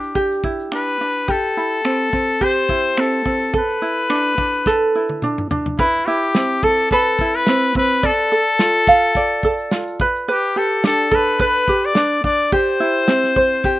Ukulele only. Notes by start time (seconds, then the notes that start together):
Already playing: D4 E4 G4
0.15 G4
0.44 E4
0.72 D4
1.01 D4
1.28 G4
1.57 E4
1.85 C4
2.13 C4
2.41 G4
2.69 E4
2.98 C4
3.25 C4
3.53 A4
3.82 E4
4.10 D4
4.38 D4
4.67 A4
4.95 E4
5.23 D4
5.51 D4
5.79 B4
6.07 E4
6.36 C4
6.63 A4
6.92 B4
7.21 E4
7.48 C4
7.76 C4
8.03 D5
8.32 A4
8.60 F4
8.88 F5
9.17 D5
9.44 A4
9.72 F4
10.01 B4
10.28 B4
10.56 G4
10.84 D4
11.11 A4
11.40 B4
11.69 G4
11.96 D4
12.24 D4
12.52 G4
12.80 E4
13.08 C4
13.36 C5
13.65 G4